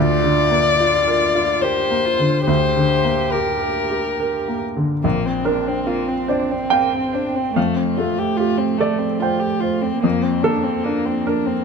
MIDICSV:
0, 0, Header, 1, 4, 480
1, 0, Start_track
1, 0, Key_signature, -2, "major"
1, 0, Tempo, 845070
1, 1409, Time_signature, 3, 2, 24, 8
1, 4298, Tempo, 825309
1, 6669, End_track
2, 0, Start_track
2, 0, Title_t, "Upright piano"
2, 0, Program_c, 0, 0
2, 0, Note_on_c, 0, 38, 59
2, 91, Control_c, 0, 64, 127
2, 132, Note_on_c, 0, 50, 41
2, 287, Note_on_c, 0, 58, 41
2, 385, Note_off_c, 0, 50, 0
2, 454, Note_on_c, 0, 65, 42
2, 542, Note_off_c, 0, 58, 0
2, 611, Note_on_c, 0, 70, 40
2, 705, Note_off_c, 0, 65, 0
2, 766, Note_on_c, 0, 65, 34
2, 864, Note_off_c, 0, 70, 0
2, 920, Note_on_c, 0, 70, 35
2, 1022, Note_off_c, 0, 65, 0
2, 1082, Note_on_c, 0, 58, 32
2, 1180, Note_off_c, 0, 70, 0
2, 1244, Note_on_c, 0, 50, 33
2, 1342, Note_off_c, 0, 58, 0
2, 1382, Note_off_c, 0, 38, 0
2, 1404, Note_on_c, 0, 38, 49
2, 1407, Note_off_c, 0, 50, 0
2, 1419, Control_c, 0, 64, 0
2, 1512, Control_c, 0, 64, 127
2, 1571, Note_on_c, 0, 50, 35
2, 1726, Note_on_c, 0, 58, 32
2, 1828, Note_off_c, 0, 50, 0
2, 1897, Note_on_c, 0, 67, 37
2, 1987, Note_off_c, 0, 58, 0
2, 2054, Note_on_c, 0, 70, 32
2, 2154, Note_off_c, 0, 67, 0
2, 2215, Note_on_c, 0, 67, 32
2, 2314, Note_off_c, 0, 70, 0
2, 2385, Note_on_c, 0, 70, 33
2, 2476, Note_off_c, 0, 67, 0
2, 2545, Note_on_c, 0, 58, 29
2, 2641, Note_off_c, 0, 70, 0
2, 2705, Note_on_c, 0, 50, 28
2, 2801, Note_off_c, 0, 58, 0
2, 2837, Note_off_c, 0, 38, 0
2, 2864, Note_off_c, 0, 50, 0
2, 2864, Note_on_c, 0, 34, 46
2, 2873, Control_c, 0, 64, 0
2, 2983, Control_c, 0, 64, 127
2, 3094, Note_on_c, 0, 62, 37
2, 3096, Note_on_c, 0, 70, 56
2, 3332, Note_on_c, 0, 65, 36
2, 3478, Note_off_c, 0, 62, 0
2, 3553, Note_off_c, 0, 70, 0
2, 3569, Note_on_c, 0, 72, 51
2, 3575, Note_on_c, 0, 74, 35
2, 3720, Note_off_c, 0, 65, 0
2, 3798, Note_off_c, 0, 72, 0
2, 3807, Note_on_c, 0, 79, 71
2, 3821, Note_on_c, 0, 77, 37
2, 3962, Note_off_c, 0, 74, 0
2, 4050, Note_on_c, 0, 72, 38
2, 4202, Note_off_c, 0, 77, 0
2, 4268, Note_off_c, 0, 79, 0
2, 4274, Note_off_c, 0, 34, 0
2, 4292, Note_off_c, 0, 72, 0
2, 4295, Note_on_c, 0, 41, 45
2, 4296, Note_on_c, 0, 77, 55
2, 4307, Control_c, 0, 64, 0
2, 4385, Control_c, 0, 64, 127
2, 4538, Note_on_c, 0, 57, 35
2, 4782, Note_on_c, 0, 67, 36
2, 4924, Note_off_c, 0, 57, 0
2, 4996, Note_off_c, 0, 77, 0
2, 5016, Note_on_c, 0, 69, 35
2, 5019, Note_on_c, 0, 74, 61
2, 5164, Note_off_c, 0, 67, 0
2, 5241, Note_off_c, 0, 74, 0
2, 5261, Note_on_c, 0, 79, 36
2, 5262, Note_on_c, 0, 72, 47
2, 5399, Note_off_c, 0, 69, 0
2, 5487, Note_off_c, 0, 72, 0
2, 5496, Note_on_c, 0, 72, 38
2, 5641, Note_off_c, 0, 79, 0
2, 5711, Note_off_c, 0, 41, 0
2, 5734, Note_on_c, 0, 41, 51
2, 5735, Note_off_c, 0, 72, 0
2, 5746, Control_c, 0, 64, 0
2, 5827, Control_c, 0, 64, 127
2, 5969, Note_on_c, 0, 69, 64
2, 5975, Note_on_c, 0, 58, 36
2, 6210, Note_on_c, 0, 62, 39
2, 6358, Note_off_c, 0, 58, 0
2, 6429, Note_off_c, 0, 69, 0
2, 6450, Note_on_c, 0, 70, 50
2, 6599, Note_off_c, 0, 62, 0
2, 6669, Note_off_c, 0, 41, 0
2, 6669, Note_off_c, 0, 70, 0
2, 6669, End_track
3, 0, Start_track
3, 0, Title_t, "Cello"
3, 0, Program_c, 1, 42
3, 0, Note_on_c, 1, 65, 63
3, 443, Note_off_c, 1, 65, 0
3, 446, Note_on_c, 1, 65, 60
3, 929, Note_on_c, 1, 67, 54
3, 938, Note_off_c, 1, 65, 0
3, 1166, Note_on_c, 1, 65, 46
3, 1175, Note_off_c, 1, 67, 0
3, 1401, Note_off_c, 1, 65, 0
3, 1404, Note_on_c, 1, 67, 55
3, 2597, Note_off_c, 1, 67, 0
3, 2858, Note_on_c, 1, 60, 49
3, 4271, Note_off_c, 1, 60, 0
3, 4303, Note_on_c, 1, 57, 46
3, 5715, Note_off_c, 1, 57, 0
3, 5730, Note_on_c, 1, 58, 50
3, 6669, Note_off_c, 1, 58, 0
3, 6669, End_track
4, 0, Start_track
4, 0, Title_t, "Violin"
4, 0, Program_c, 2, 40
4, 0, Note_on_c, 2, 74, 75
4, 920, Note_on_c, 2, 72, 61
4, 929, Note_off_c, 2, 74, 0
4, 1394, Note_off_c, 2, 72, 0
4, 1398, Note_on_c, 2, 72, 61
4, 1886, Note_on_c, 2, 70, 49
4, 1894, Note_off_c, 2, 72, 0
4, 2619, Note_off_c, 2, 70, 0
4, 2860, Note_on_c, 2, 58, 44
4, 2986, Note_on_c, 2, 60, 38
4, 2994, Note_off_c, 2, 58, 0
4, 3096, Note_on_c, 2, 62, 41
4, 3104, Note_off_c, 2, 60, 0
4, 3224, Note_on_c, 2, 60, 40
4, 3232, Note_off_c, 2, 62, 0
4, 3331, Note_on_c, 2, 58, 45
4, 3339, Note_off_c, 2, 60, 0
4, 3453, Note_on_c, 2, 60, 41
4, 3462, Note_off_c, 2, 58, 0
4, 3570, Note_on_c, 2, 62, 37
4, 3578, Note_off_c, 2, 60, 0
4, 3701, Note_on_c, 2, 60, 38
4, 3709, Note_off_c, 2, 62, 0
4, 3816, Note_on_c, 2, 58, 42
4, 3825, Note_off_c, 2, 60, 0
4, 3941, Note_on_c, 2, 60, 42
4, 3950, Note_off_c, 2, 58, 0
4, 4057, Note_on_c, 2, 62, 39
4, 4065, Note_off_c, 2, 60, 0
4, 4178, Note_on_c, 2, 60, 45
4, 4186, Note_off_c, 2, 62, 0
4, 4290, Note_off_c, 2, 60, 0
4, 4293, Note_on_c, 2, 57, 44
4, 4411, Note_on_c, 2, 60, 40
4, 4420, Note_off_c, 2, 57, 0
4, 4533, Note_on_c, 2, 65, 41
4, 4542, Note_off_c, 2, 60, 0
4, 4659, Note_on_c, 2, 67, 43
4, 4667, Note_off_c, 2, 65, 0
4, 4766, Note_on_c, 2, 65, 47
4, 4775, Note_off_c, 2, 67, 0
4, 4886, Note_on_c, 2, 60, 42
4, 4895, Note_off_c, 2, 65, 0
4, 5002, Note_on_c, 2, 57, 38
4, 5010, Note_off_c, 2, 60, 0
4, 5121, Note_on_c, 2, 60, 38
4, 5130, Note_off_c, 2, 57, 0
4, 5248, Note_on_c, 2, 65, 39
4, 5257, Note_off_c, 2, 60, 0
4, 5363, Note_on_c, 2, 67, 41
4, 5372, Note_off_c, 2, 65, 0
4, 5481, Note_on_c, 2, 65, 39
4, 5489, Note_off_c, 2, 67, 0
4, 5609, Note_on_c, 2, 60, 44
4, 5617, Note_off_c, 2, 65, 0
4, 5726, Note_off_c, 2, 60, 0
4, 5730, Note_on_c, 2, 58, 47
4, 5846, Note_on_c, 2, 60, 42
4, 5855, Note_off_c, 2, 58, 0
4, 5961, Note_on_c, 2, 62, 44
4, 5970, Note_off_c, 2, 60, 0
4, 6081, Note_on_c, 2, 60, 44
4, 6090, Note_off_c, 2, 62, 0
4, 6202, Note_on_c, 2, 58, 49
4, 6211, Note_off_c, 2, 60, 0
4, 6325, Note_on_c, 2, 60, 42
4, 6334, Note_off_c, 2, 58, 0
4, 6448, Note_on_c, 2, 62, 42
4, 6456, Note_off_c, 2, 60, 0
4, 6563, Note_on_c, 2, 60, 41
4, 6572, Note_off_c, 2, 62, 0
4, 6669, Note_off_c, 2, 60, 0
4, 6669, End_track
0, 0, End_of_file